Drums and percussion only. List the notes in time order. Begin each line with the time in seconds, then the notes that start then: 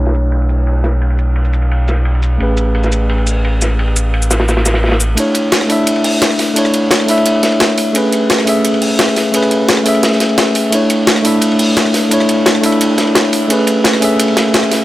0.06 snare, shaker
0.15 ride, shaker
0.32 ride
0.42 ride
0.49 open hi-hat, shaker
0.67 ride
0.84 snare, ride, shaker
1.01 ride
1.10 ride
1.19 ride, shaker
1.36 ride
1.45 ride, shaker
1.53 ride, shaker
1.62 ride
1.71 ride
1.88 snare, ride, shaker
1.97 ride
2.05 ride
2.15 ride
2.23 ride, shaker
2.40 ride
2.57 ride, shaker
2.75 ride
2.84 snare, shaker
2.92 ride, shaker
3.09 ride
3.18 ride
3.27 open hi-hat, shaker
3.45 ride
3.62 snare, ride, shaker
3.79 ride
3.88 ride
3.96 ride, shaker
4.14 ride
4.22 ride, shaker
4.31 snare, ride, shaker
4.40 snare, ride
4.48 snare, ride, shaker
4.57 snare, ride
4.66 snare, ride, shaker
4.74 snare, ride
4.83 snare, ride
4.87 snare, ride
4.92 snare, ride
5.00 ride, shaker
5.17 closed hi-hat, ride
5.35 closed hi-hat, ride
5.52 snare, closed hi-hat, ride
5.61 cross-stick, snare
5.70 open hi-hat, ride
5.87 closed hi-hat, ride
5.96 ride
6.04 closed hi-hat, open hi-hat
6.22 snare, closed hi-hat, ride
6.31 cross-stick
6.39 snare, open hi-hat, ride
6.56 closed hi-hat, ride
6.65 cross-stick, ride
6.74 closed hi-hat, ride
6.91 snare, closed hi-hat, ride
6.99 cross-stick, ride
7.08 open hi-hat, ride
7.18 ride
7.26 closed hi-hat, ride
7.43 snare, closed hi-hat, ride
7.52 ride
7.60 snare, closed hi-hat, ride
7.69 ride
7.78 open hi-hat, ride
7.95 closed hi-hat, ride
8.12 closed hi-hat, ride
8.30 snare, closed hi-hat, ride
8.39 cross-stick, snare
8.47 open hi-hat, ride
8.65 closed hi-hat, ride
8.74 ride
8.82 closed hi-hat, open hi-hat
8.99 snare, closed hi-hat, ride
9.08 cross-stick
9.16 snare, open hi-hat, ride
9.34 closed hi-hat, ride
9.43 cross-stick, ride
9.51 closed hi-hat, ride
9.69 snare, closed hi-hat, ride
9.77 cross-stick, ride
9.86 open hi-hat, ride
9.95 ride
10.03 snare, closed hi-hat, ride
10.12 snare
10.20 snare, closed hi-hat, ride
10.29 ride
10.38 snare, closed hi-hat, ride
10.47 ride
10.55 open hi-hat, ride
10.72 closed hi-hat, ride
10.90 closed hi-hat, ride
11.07 snare, closed hi-hat, ride
11.16 cross-stick, snare
11.25 open hi-hat, ride
11.41 closed hi-hat, ride
11.52 ride
11.59 closed hi-hat, open hi-hat
11.77 snare, closed hi-hat, ride
11.85 cross-stick
11.94 snare, open hi-hat, ride
12.11 closed hi-hat, ride
12.20 cross-stick, ride
12.29 closed hi-hat, ride
12.46 snare, closed hi-hat, ride
12.55 cross-stick, ride
12.63 open hi-hat, ride
12.72 ride
12.81 closed hi-hat, ride
12.98 snare, closed hi-hat, ride
13.07 ride
13.15 snare, closed hi-hat, ride
13.25 ride
13.33 open hi-hat, ride
13.50 closed hi-hat, ride
13.67 closed hi-hat, ride
13.84 snare, closed hi-hat, ride
13.93 cross-stick, snare
14.02 open hi-hat, ride
14.19 closed hi-hat, ride
14.28 ride
14.37 snare, closed hi-hat, ride
14.54 snare, closed hi-hat, ride
14.63 cross-stick
14.71 snare, open hi-hat, ride